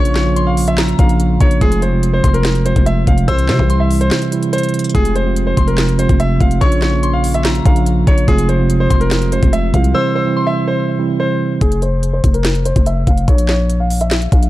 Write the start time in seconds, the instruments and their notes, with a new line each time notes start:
Already playing: 808-style bass A#1, tine electric piano C#3 F3 A#3 C#4 F4, grand piano C#5, synth bell C#6
0.05 closed hi-hat
0.15 grand piano C#5, snare, clap, closed hi-hat
0.25 tine electric piano C#3 F3 A#3 C#4 F4
0.36 synth bell C6, closed hi-hat
0.47 grand piano F5
0.57 open hi-hat
0.68 grand piano E5, closed hi-hat
0.77 synth bell A#5, snare, clap, closed hi-hat
0.88 closed hi-hat
0.98 808-style bass A#1, tine electric piano C#3 F3 A#3 C#4 F4, grand piano F5, kick, closed hi-hat
1.09 closed hi-hat
1.20 closed hi-hat
1.41 808-style bass A#1, grand piano C#5, kick, closed hi-hat
1.51 closed hi-hat
1.61 808-style bass F1, tine electric piano C3 F3 G#3 C4 F4, grand piano G#4, kick, closed hi-hat
1.72 closed hi-hat
1.82 grand piano C5, closed hi-hat
1.92 tine electric piano C3 F3 G#3 C4 F4
2.03 closed hi-hat
2.13 grand piano C5
2.24 808-style bass F1, synth bell C6, kick, closed hi-hat
2.34 grand piano A#4, closed hi-hat
2.44 snare, clap, closed hi-hat
2.55 closed hi-hat
2.65 tine electric piano C3 F3 G#3 C4 F4, grand piano C5, closed hi-hat
2.76 808-style bass F1, kick, closed hi-hat
2.86 grand piano E5, closed hi-hat
3.07 808-style bass F1, grand piano F5, kick, closed hi-hat
3.18 closed hi-hat
3.27 808-style bass C2, tine electric piano C3 E3 G3 C4 E4, grand piano C5, synth bell E6, kick, closed hi-hat
3.39 closed hi-hat
3.48 808-style bass C3, grand piano C5, snare, clap, closed hi-hat
3.59 808-style bass C2, tine electric piano C3 E3 G3 C4 E4, kick
3.70 synth bell C6, closed hi-hat
3.80 grand piano E5
3.91 open hi-hat
4.01 grand piano C5, closed hi-hat
4.11 snare, clap, closed hi-hat
4.22 closed hi-hat
4.32 tine electric piano C3 E3 G3 C4 E4, closed hi-hat
4.43 closed hi-hat
4.53 grand piano C5, closed hi-hat
4.58 closed hi-hat
4.63 closed hi-hat
4.69 closed hi-hat
4.74 closed hi-hat
4.79 closed hi-hat
4.84 closed hi-hat
4.89 closed hi-hat
4.94 808-style bass F1, tine electric piano C3 F3 G#3 C4 F4, grand piano G#4, kick, closed hi-hat
5.05 closed hi-hat
5.16 grand piano C5, closed hi-hat
5.26 tine electric piano C3 F3 G#3 C4 F4
5.36 closed hi-hat
5.47 grand piano C5
5.57 808-style bass F1, synth bell C6, kick, closed hi-hat
5.67 grand piano A#4, closed hi-hat
5.77 snare, clap, closed hi-hat
5.89 closed hi-hat
5.98 tine electric piano C3 F3 G#3 C4 F4, grand piano C5, closed hi-hat
6.09 808-style bass F1, kick, closed hi-hat
6.20 grand piano E5, closed hi-hat
6.40 808-style bass F1, grand piano F5, kick, closed hi-hat
6.51 closed hi-hat
6.61 808-style bass A#1, tine electric piano C#3 F3 A#3 C#4 F4, grand piano C#5, synth bell C#6, kick, closed hi-hat
6.72 closed hi-hat
6.82 grand piano C#5, snare, clap, closed hi-hat
6.92 tine electric piano C#3 F3 A#3 C#4 F4
7.03 synth bell C6, closed hi-hat
7.13 grand piano F5
7.24 open hi-hat
7.34 grand piano E5, closed hi-hat
7.44 synth bell A#5, snare, clap, closed hi-hat
7.55 closed hi-hat
7.65 808-style bass A#1, tine electric piano C#3 F3 A#3 C#4 F4, grand piano F5, kick, closed hi-hat
7.76 closed hi-hat
7.86 closed hi-hat
8.07 808-style bass A#1, grand piano C#5, kick, closed hi-hat
8.18 closed hi-hat
8.27 808-style bass F1, tine electric piano C3 F3 G#3 C4 F4, grand piano G#4, kick, closed hi-hat
8.38 closed hi-hat
8.49 grand piano C5, closed hi-hat
8.59 tine electric piano C3 F3 G#3 C4 F4
8.70 closed hi-hat
8.80 grand piano C5
8.90 808-style bass F1, synth bell C6, kick, closed hi-hat
9.01 grand piano A#4, closed hi-hat
9.11 snare, clap, closed hi-hat
9.22 closed hi-hat
9.32 tine electric piano C3 F3 G#3 C4 F4, grand piano C5, closed hi-hat
9.43 808-style bass F1, kick, closed hi-hat
9.53 grand piano E5, closed hi-hat
9.74 808-style bass C2, grand piano F5, kick, closed hi-hat
9.84 closed hi-hat
9.94 tine electric piano C3 E3 G3 C4 E4, grand piano C5, synth bell E6
10.15 grand piano C5
10.25 tine electric piano C3 E3 G3 C4 E4
10.37 synth bell C6
10.47 grand piano E5
10.68 grand piano C5
10.98 tine electric piano C3 E3 G3 C4 E4
11.20 grand piano C5
11.61 808-style bass F1, grand piano G#4, kick, closed hi-hat
11.72 closed hi-hat
11.82 grand piano C5, closed hi-hat
12.03 closed hi-hat
12.13 grand piano C5
12.24 808-style bass F1, kick, closed hi-hat
12.34 grand piano A#4, closed hi-hat
12.44 snare, clap, closed hi-hat
12.55 closed hi-hat
12.65 grand piano C5, closed hi-hat
12.76 808-style bass F1, kick, closed hi-hat
12.86 grand piano E5, closed hi-hat
13.07 808-style bass F1, grand piano F5, kick, closed hi-hat
13.18 closed hi-hat
13.28 808-style bass A#1, grand piano C#5, kick, closed hi-hat
13.38 closed hi-hat
13.48 grand piano C#5, snare, clap, closed hi-hat
13.70 closed hi-hat
13.80 grand piano F5
13.90 open hi-hat
14.01 grand piano E5, closed hi-hat
14.11 snare, clap, closed hi-hat
14.22 closed hi-hat
14.32 808-style bass A#1, grand piano F5, kick, closed hi-hat
14.43 closed hi-hat